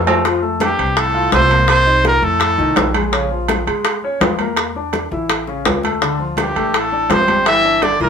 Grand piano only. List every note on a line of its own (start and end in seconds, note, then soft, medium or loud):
0.06 0.21 A3 medium
0.06 0.21 A4 medium
0.06 0.22 C5 medium
0.24 0.39 F3 medium
0.24 0.39 F4 medium
0.42 0.72 A3 medium
0.42 0.72 A4 medium
0.79 1.08 C4 medium
0.79 1.08 C5 medium
1.14 1.29 F4 medium
1.14 1.29 F5 medium
1.32 1.47 A3 medium
1.32 1.47 A4 medium
1.50 1.80 A#3 medium
1.50 1.80 A#4 medium
1.86 2.16 D#4 medium
1.86 2.16 D#5 medium
2.22 2.52 A3 medium
2.22 2.52 A4 medium
2.58 2.88 D#3 medium
2.58 2.88 D#4 medium
2.95 3.09 G#3 medium
2.95 3.10 G#4 medium
3.12 3.27 C#3 medium
3.12 3.28 C#4 medium
3.31 3.61 F3 medium
3.31 3.61 F4 medium
3.67 3.97 G#3 medium
3.67 3.97 G#4 medium
4.04 4.18 C#4 medium
4.04 4.19 C#5 medium
4.22 4.36 F3 medium
4.22 4.37 F4 medium
4.40 4.69 A#3 medium
4.40 4.70 A#4 medium
4.76 5.06 D4 medium
4.76 5.06 D5 medium
5.12 5.42 E3 medium
5.12 5.42 E4 medium
5.48 5.77 C#3 medium
5.48 5.77 C#4 medium
5.83 5.98 A3 medium
5.83 5.99 A4 medium
6.02 6.17 D3 medium
6.02 6.17 D4 medium
6.19 6.49 F3 medium
6.19 6.49 F4 medium
6.56 6.85 A3 medium
6.56 6.86 A4 medium
6.92 7.07 D4 medium
6.92 7.07 D5 medium
7.10 7.25 F3 medium
7.10 7.25 F4 medium
7.28 7.58 G3 medium
7.28 7.58 G4 medium
7.65 7.94 D4 medium
7.65 7.95 D5 medium
8.00 8.09 E3 medium
8.00 8.09 E4 medium